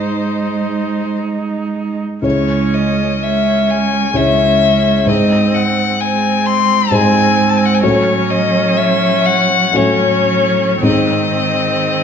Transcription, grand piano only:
0.00 2.20 G#2 soft
0.00 2.20 D#4 soft
0.00 2.20 G#4 soft
0.00 2.20 D#5 soft
2.22 4.11 C#2 soft
2.22 4.11 E4 soft
2.22 4.11 G#4 soft
2.22 4.12 C#5 soft
4.14 5.04 C#2 soft
4.14 5.04 E4 soft
4.14 5.05 G#4 soft
4.14 5.05 C#5 soft
5.06 6.87 G#2 soft
5.06 6.88 D#4 soft
5.06 6.88 G#4 soft
5.06 6.88 C5 soft
6.91 7.80 G#2 soft
6.91 7.80 D#4 soft
6.91 7.80 G#4 soft
6.91 7.80 C5 soft
7.82 9.72 A2 soft
7.82 9.72 C#4 soft
7.82 9.72 F#4 soft
7.82 9.72 C#5 soft
9.73 10.80 A2 soft
9.73 10.80 C#4 soft
9.73 10.80 F#4 soft
9.73 10.80 C#5 soft
10.82 12.04 G#2 soft
10.82 12.04 C4 soft
10.82 12.04 D#4 soft
10.82 12.04 G#4 soft

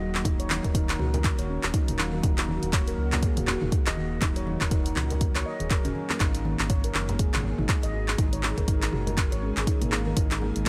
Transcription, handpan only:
0.01 0.14 F#4 medium
0.25 0.33 D#4 loud
0.40 0.49 C#5 loud
0.64 0.70 A#4 medium
0.75 0.88 D#4 loud
0.99 1.13 F#4 medium
1.14 1.20 A#4 medium
1.39 1.48 C#5 loud
1.49 1.57 C#4 medium
1.74 1.87 D#4 loud
1.89 1.98 A#3 loud
2.13 2.19 A#4 medium
2.24 2.37 D#4 loud
2.48 2.61 A#3 medium
2.73 2.86 C#5 loud
2.88 2.93 A#4 loud
3.12 3.22 A#3 medium
3.23 3.36 G#4 medium
3.48 3.61 A#3 medium
3.62 3.71 D#4 medium
3.87 3.96 D#5 loud
3.97 4.11 F#4 medium
4.22 4.30 D#4 loud
4.37 4.46 C#5 loud
4.61 4.67 A#4 medium
4.72 4.85 D#4 loud
4.96 5.10 F#4 medium
5.11 5.16 A#4 medium
5.36 5.45 C#5 loud
5.46 5.60 D#5 loud
5.60 5.70 G#4 medium
5.71 5.84 A#4 loud
5.85 5.91 C#4 loud
6.10 6.20 A#3 loud
6.20 6.33 D#4 loud
6.45 6.58 A#3 medium
6.70 6.83 C#5 loud
6.84 6.90 A#4 loud
7.09 7.18 A#3 medium
7.19 7.32 G#4 medium
7.44 7.57 A#3 medium
7.59 7.68 D#4 medium
7.83 7.93 D#5 loud
7.94 8.07 F#4 medium
8.19 8.26 D#4 loud
8.33 8.42 C#5 loud
8.58 8.63 A#4 medium
8.68 8.81 D#4 loud
8.93 9.07 F#4 medium
9.07 9.13 A#4 medium
9.32 9.41 C#5 loud
9.43 9.50 C#4 medium
9.67 9.80 D#4 loud
9.82 9.92 A#3 loud
10.07 10.12 A#4 medium
10.17 10.30 D#4 loud
10.42 10.55 A#3 medium

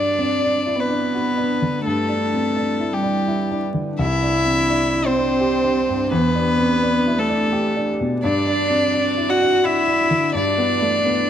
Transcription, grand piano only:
0.00 1.81 G2 medium
0.00 0.33 D4 soft
0.19 0.42 C4 soft
0.43 0.80 D4 soft
0.66 0.90 E4 soft
0.90 1.28 D4 soft
1.15 1.52 F#4 soft
1.38 1.76 D4 soft
1.62 1.85 D3 soft
1.86 3.95 G2 medium
2.09 2.47 D4 soft
2.34 2.57 C4 soft
2.57 2.94 D4 soft
2.80 3.04 E4 soft
3.03 3.41 D4 soft
3.28 3.66 E4 soft
3.51 3.89 D4 soft
3.74 3.98 D3 soft
3.99 6.07 C2 medium
4.23 4.60 D4 soft
4.45 4.69 C4 soft
4.70 5.07 D4 medium
4.93 5.17 E4 soft
5.16 5.55 D4 medium
5.41 5.78 G4 medium
5.64 6.02 D4 soft
5.89 6.12 G2 soft
6.12 8.19 E2 medium
6.35 6.72 D4 medium
6.59 6.82 C4 soft
6.83 7.20 D4 medium
7.07 7.30 E4 soft
7.30 7.67 D4 medium
7.53 7.90 G4 medium
7.76 8.14 D4 medium
8.01 8.23 B2 medium
8.24 10.31 G2 medium
8.46 8.84 D4 medium
8.70 8.93 C4 medium
8.94 9.31 D4 medium
9.17 9.41 E4 medium
9.42 9.79 D4 medium
9.65 10.02 F#4 medium
9.88 10.25 D4 medium
10.11 10.34 D3 medium
10.34 11.30 G2 medium
10.58 10.96 B3 medium
10.82 11.05 A3 medium
11.05 11.30 B3 medium

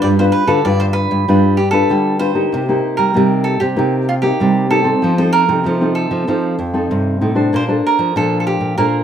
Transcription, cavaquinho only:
0.02 0.07 D5 loud
0.19 0.24 C5 medium
0.32 0.49 B4 medium
0.47 0.65 A4 medium
0.65 0.81 D5 loud
0.80 0.85 C5 medium
0.93 1.53 B4 loud
1.57 1.70 G4 medium
1.71 2.16 A4 medium
2.19 3.01 C5 loud
2.97 3.44 A#4 medium
3.44 3.60 A4 medium
3.60 4.08 G4 medium
4.09 4.14 F4 medium
4.22 4.67 G4 medium
4.71 5.15 A4 medium
5.18 5.34 C5 medium
5.33 5.95 A#4 loud
5.95 7.17 A4 medium
7.56 7.64 C5 loud
7.87 8.14 A#4 medium
8.17 8.39 A4 medium
8.40 8.46 A4 medium
8.47 8.77 G4 medium
8.78 9.04 A#4 medium

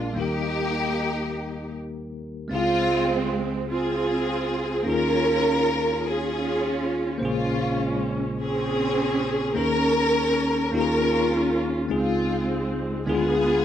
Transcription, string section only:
0.00 0.14 G#3 medium
0.00 0.14 D4 medium
0.00 0.18 F4 medium
0.19 1.71 A#3 medium
0.19 1.71 D#4 medium
0.19 1.75 G4 medium
2.54 3.67 G#3 medium
2.54 3.67 C4 medium
2.54 3.27 F4 loud
3.71 4.84 C4 medium
3.71 4.84 F4 medium
3.71 4.84 G#4 medium
4.89 6.01 C#4 medium
4.89 6.02 F4 medium
4.89 6.05 A#4 loud
6.06 7.19 C#4 medium
6.06 7.19 F4 medium
6.06 6.93 G#4 medium
7.24 8.36 G#3 medium
7.24 8.36 C#4 medium
7.24 7.97 F4 medium
8.41 9.54 C4 medium
8.41 9.54 C#4 medium
8.41 9.53 G#4 medium
9.59 10.71 C#4 medium
9.59 10.75 A#4 loud
10.77 11.89 C#4 medium
10.77 11.89 F4 medium
10.77 11.59 A#4 loud
11.94 13.05 G#3 medium
11.94 13.05 C4 medium
11.94 12.67 F4 medium
13.09 13.65 B3 medium
13.09 13.65 F4 medium
13.09 13.65 G#4 medium

